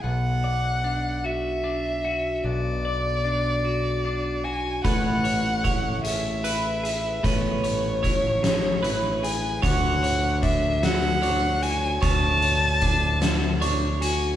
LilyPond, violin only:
\new Staff \with { instrumentName = "Violin" } { \time 6/8 \key a \major \tempo 4. = 50 fis''4. e''4. | d''2~ d''8 gis''8 | fis''4. e''4. | cis''2~ cis''8 gis''8 |
fis''4 e''8 fis''4 gis''8 | a''2 r8 gis''8 | }